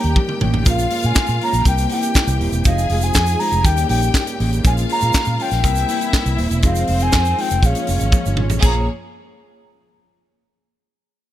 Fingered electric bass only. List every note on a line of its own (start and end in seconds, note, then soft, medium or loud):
0.04 0.14 D#2 medium
0.42 0.66 A1 medium
0.66 0.85 A#1 loud
1.04 1.14 A#2 medium
1.29 1.38 A#2 loud
1.53 1.63 A#1 medium
1.66 1.85 C2 medium
2.27 2.37 C2 medium
2.40 2.49 D#1 loud
2.52 2.62 E1 medium
2.65 2.84 F1 loud
2.90 3.09 F1 loud
3.15 3.34 F2 loud
3.52 3.62 F1 medium
3.65 3.84 D#2 loud
3.89 4.09 A#1 medium
4.40 4.59 A1 loud
4.65 4.84 A#1 loud
5.03 5.12 A#2 loud
5.27 5.36 A#2 loud
5.52 5.64 A#1 medium
5.64 5.83 C2 loud
6.26 6.36 C2 medium
6.38 6.48 D#1 loud
6.51 6.63 E1 loud
6.63 6.83 F1 loud
6.89 7.08 F1 loud
7.13 7.32 F2 loud
7.51 7.61 F1 medium
7.63 7.73 A#1 loud
7.89 7.98 F1 medium
8.01 8.11 G#1 medium
8.26 8.39 G1 medium
8.39 8.51 G#1 loud
8.51 8.60 A1 medium
8.63 8.86 A#1 medium